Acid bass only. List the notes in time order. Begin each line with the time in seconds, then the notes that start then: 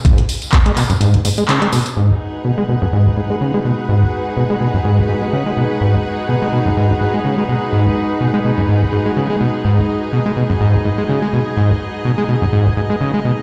0.05 G#2
0.18 G#1
0.53 B2
0.66 G#3
0.77 B2
0.90 F#2
1.01 G#2
1.14 G#1
1.25 G#2
1.38 G#3
1.49 C#3
1.62 G#3
1.73 B2
1.97 G#2
2.10 G#1
2.45 B2
2.58 G#3
2.69 B2
2.82 F#2
2.93 G#2
3.06 G#1
3.17 G#2
3.30 G#3
3.41 C#3
3.54 G#3
3.65 B2
3.89 G#2
4.02 G#1
4.37 B2
4.50 G#3
4.61 B2
4.74 F#2
4.85 G#2
4.98 G#1
5.09 G#2
5.22 G#3
5.33 C#3
5.46 G#3
5.57 B2
5.81 G#2
5.94 G#1
6.29 B2
6.42 G#3
6.53 B2
6.66 F#2
6.77 G#2
6.90 G#1
7.01 G#2
7.14 G#3
7.25 C#3
7.38 G#3
7.49 B2
7.73 G#2
7.86 G#1
8.21 B2
8.34 G#3
8.45 B2
8.58 F#2
8.69 G#2
8.82 G#1
8.93 G#2
9.06 G#3
9.17 C#3
9.30 G#3
9.41 B2
9.65 G#2
9.78 G#1
10.13 B2
10.26 G#3
10.37 B2
10.50 F#2
10.61 G#2
10.74 G#1
10.85 G#2
10.98 G#3
11.09 C#3
11.22 G#3
11.33 B2
11.57 G#2
11.70 G#1
12.05 B2
12.18 G#3
12.29 B2
12.42 F#2
12.53 G#2
12.66 G#1
12.77 G#2
12.90 G#3
13.01 C#3
13.14 G#3
13.25 B2